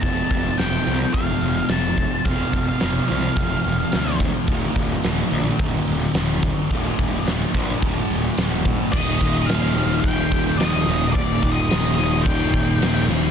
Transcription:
<<
  \new Staff \with { instrumentName = "Lead electric guitar" } { \time 4/4 \key ees \lydian \tempo 4 = 108 a''4 g''4 f''4 a''4 | f''8. f''8. f''2 r8 | r1 | r1 |
ees''4 f''4 g''4 ees''4 | d''8. ees''8. ees''8 g''4. r8 | }
  \new Staff \with { instrumentName = "Distorted electric guitar" } { \clef bass \time 4/4 \key ees \lydian <f, c f>4. <f, c f>2~ <f, c f>8 | <f, c f>4. <f, c f>2~ <f, c f>8 | <ees, bes, ees>4. <ees, bes, ees>2~ <ees, bes, ees>8 | <ees, bes, ees>4. <ees, bes, ees>2~ <ees, bes, ees>8 |
<ees, bes, ees>8 <bes, ees>8 <ees, bes, ees>8 <bes, ees>4. <ees, bes, ees>8 <bes, ees>8 | <ees, bes, ees>8 <bes, ees>8 <ees, bes, ees>8 <bes, ees>4. <ees, bes, ees>8 <bes, ees>8 | }
  \new Staff \with { instrumentName = "Picked electric bass" } { \clef bass \time 4/4 \key ees \lydian f,,8 f,,8 f,,8 c,8 f,,8 f,,8 f,,4 | f,,8 f,,8 f,,8 c,8 f,,8 f,,8 d,4 | ees,,8 ees,,8 ees,,8 bes,,8 ees,,8 ees,,8 ees,,4 | ees,,8 ees,,8 ees,,8 bes,,8 ees,,8 ees,,8 ees,,4 |
ees,,8 ees,,8 ees,,4 ees,,4 ees,,8 ees,,8 | ees,,8 ees,,8 ees,,8 ees,,8 ees,,8 ees,,8 ees,,8 ees,,8 | }
  \new DrumStaff \with { instrumentName = "Drums" } \drummode { \time 4/4 <hho bd>8 <hho bd>8 <hho sn>8 hho8 <hho bd>8 hho8 <hho sn>8 <hho bd>8 | <hho bd>8 <hho bd>8 <hho sn>8 hho8 <hho bd>8 hho8 <hho sn>16 sn16 <hho bd>8 | <hho bd>8 <hho bd>8 <hho sn>8 hho8 <hho bd>8 hho8 <hho sn>8 <hho bd>8 | <hho bd>8 <hho bd>8 <hho sn>8 <hho bd>8 <hho bd>8 hho8 <hho sn>8 <hho bd>8 |
<cymc bd>8 bd8 <cymc sn>4 <cymc bd>8 <bd sn>16 sn16 <cymc sn>4 | <cymc bd>8 bd8 <cymc sn>4 <cymc bd>8 bd8 <cymc sn>4 | }
>>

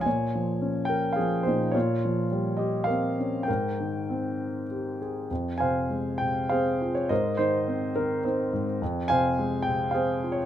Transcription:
<<
  \new Staff \with { instrumentName = "Grand piano" } { \time 3/4 \key f \minor \tempo 4 = 105 << { aes''4. g''8 f''8 c''8 | des''4 r8 ees''8 f''4 | g''2 r4 | r8 aes''4 g''8 f''8. des''16 |
ees''8 c''4 bes'8 c''8. r16 | r8 aes''4 g''8 f''8. des''16 | } \\ { des''4. bes'8 aes'8 ees'8 | f'4 r8 g'8 bes'4 | bes'2 r4 | r8 <c'' f''>4. <aes' c''>4 |
<bes' c''>8 ees'4. ees'4 | r8 <c'' f''>4. <aes' c''>4 | } >> }
  \new Staff \with { instrumentName = "Grand piano" } { \clef bass \time 3/4 \key f \minor bes,8 f8 des'4 f8 bes,8 | bes,8 f8 g4 c'8 des'8 | aes,8 ees8 c'4 g'8 aes'8 | f,8 c8 aes8 c8 c'8 f'8 |
aes,8 ees8 c'8 ees8 c'8 aes,8 | f,8 c8 aes8 c8 c'8 f'8 | }
>>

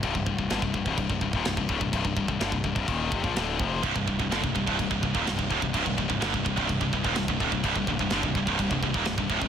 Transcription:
<<
  \new Staff \with { instrumentName = "Distorted electric guitar" } { \clef bass \time 4/4 \key c \minor \tempo 4 = 126 <c, g,>16 <c, g,>16 <c, g,>16 <c, g,>16 <g, d>16 <c, g,>16 <c, g,>16 <c, g,>16 <c, g,>16 <c, g,>16 <c, g,>16 <ees, bes,>16 <c, g,>16 <c, g,>16 <d, a,>16 <c, g,>16 | <c, g,>16 <c, g,>16 <c, g,>16 <c, g,>16 <g, d>16 <c, g,>16 <c, g,>16 <c, g,>16 <ees, bes, ees>8 <f, c>16 <bes, f>16 <d, a, d>8 <f, c f>8 | <c, g,>16 <c, g,>16 <c, g,>16 <c, g,>16 <g, d>16 <c, g,>16 <c, g,>16 <c, g,>16 <c, g,>16 <c, g,>16 <c, g,>16 <ees, bes,>16 <c, g,>16 <c, g,>16 <d, a,>16 <c, g,>16 | <c, g,>16 <c, g,>16 <c, g,>16 <c, g,>16 <g, d>16 <c, g,>16 <c, g,>16 <c, g,>16 <c, g,>16 <c, g,>16 <c, g,>16 <ees, bes,>16 <c, g,>16 <c, g,>16 <d, a,>16 <c, g,>16 |
<c, g,>16 <c, g,>16 <c, g,>16 <c, g,>16 <g, d>16 <c, g,>16 <c, g,>16 <c, g,>16 <c, g,>16 <c, g,>16 <c, g,>16 <ees, bes,>16 <c, g,>16 <c, g,>16 <d, a,>16 <c, g,>16 | }
  \new Staff \with { instrumentName = "Distorted electric guitar" } { \clef bass \time 4/4 \key c \minor r1 | r1 | <c, g,>16 <c, g,>16 <c, g,>16 <c, g,>16 <g, d>16 <c, g,>16 <c, g,>16 <c, g,>16 <c, g,>16 <c, g,>16 <c, g,>16 <ees, bes,>16 <c, g,>16 <c, g,>16 <d, a,>16 <c, g,>16 | <c, g,>16 <c, g,>16 <c, g,>16 <c, g,>16 <g, d>16 <c, g,>16 <c, g,>16 <c, g,>16 <c, g,>16 <c, g,>16 <c, g,>16 <ees, bes,>16 <c, g,>16 <c, g,>16 <d, a,>16 <c, g,>16 |
<c, g,>16 <c, g,>16 <c, g,>16 <c, g,>16 <g, d>16 <c, g,>16 <c, g,>16 <c, g,>16 <c, g,>16 <c, g,>16 <c, g,>16 <ees, bes,>16 <c, g,>16 <c, g,>16 <d, a,>16 <c, g,>16 | }
  \new Staff \with { instrumentName = "Picked electric bass" } { \clef bass \time 4/4 \key c \minor c,,16 c,,16 c,,16 c,,16 g,,16 c,,16 c,,16 c,,16 c,,16 c,,16 c,,16 ees,,16 c,,16 c,,16 d,,16 c,,16 | c,,16 c,,16 c,,16 c,,16 g,,16 c,,16 c,,16 c,,16 ees,,8 f,,16 bes,,16 d,,8 f,,8 | c,,16 c,,16 c,,16 c,,16 g,,16 c,,16 c,,16 c,,16 c,,16 c,,16 c,,16 ees,,16 c,,16 c,,16 d,,16 c,,16 | c,,16 c,,16 c,,16 c,,16 g,,16 c,,16 c,,16 c,,16 c,,16 c,,16 c,,16 ees,,16 c,,16 c,,16 d,,16 c,,16 |
c,,16 c,,16 c,,16 c,,16 g,,16 c,,16 c,,16 c,,16 c,,16 c,,16 c,,16 ees,,16 c,,16 c,,16 d,,16 c,,16 | }
  \new DrumStaff \with { instrumentName = "Drums" } \drummode { \time 4/4 <cymc bd>16 bd16 bd16 bd16 <cymc sn>16 bd16 bd16 bd16 <cymc bd>16 bd16 bd16 bd16 <cymc sn>16 bd16 bd16 bd16 | <cymc bd>16 bd16 bd16 bd16 <cymc sn>16 bd16 bd16 bd16 <cymc bd>8 bd16 bd16 <cymc sn>8 bd8 | <cymc bd>16 bd16 bd16 bd16 <cymc sn>16 bd16 bd16 bd16 <cymc bd>16 bd16 bd16 bd16 <cymc sn>16 bd16 bd16 bd16 | <cymc bd>16 bd16 bd16 bd16 <cymc sn>16 bd16 bd16 bd16 <cymc bd>16 bd16 bd16 bd16 <cymc sn>16 bd16 bd16 bd16 |
<cymc bd>16 bd16 bd16 bd16 <cymc sn>16 bd16 bd16 bd16 <cymc bd>16 bd16 bd16 bd16 <cymc sn>16 bd16 bd16 bd16 | }
>>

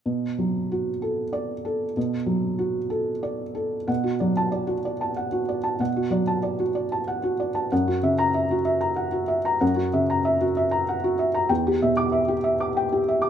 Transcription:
<<
  \new Staff \with { instrumentName = "Felt piano" } { \time 3/4 \key b \minor \tempo 4 = 95 << { r2 d''8. r16 | r2. | r8. a''8 r4. r16 | r2. |
r8. ais''8 r4. r16 | r2. | r8. d'''8 r4. r16 | } \\ { r2. | r2. | fis''16 fis'16 d''8 d''16 fis'16 d''16 a''16 fis''16 fis'16 d''16 a''16 | fis''16 fis'16 d''16 a''16 d''16 fis'16 d''16 a''16 fis''16 fis'16 d''16 a''16 |
fis''16 fis'16 e''8 e''16 fis'16 e''16 ais''16 fis''16 fis'16 e''16 ais''16 | fis''16 fis'16 e''16 ais''16 e''16 fis'16 e''16 ais''16 fis''16 fis'16 e''16 ais''16 | g''16 g'16 e''8 e''16 g'16 e''16 d'''16 g''16 g'16 e''16 d'''16 | } >> }
  \new Staff \with { instrumentName = "Felt piano" } { \clef bass \time 3/4 \key b \minor b,8 fis8 fis'8 a'4 a'8 | b,8 fis8 fis'8 a'8 d''8 a'8 | b,8 fis4 r4. | b,8 fis4 r4. |
fis,8 cis4 r4. | fis,8 cis4 r4. | e,8 b,4 r4. | }
>>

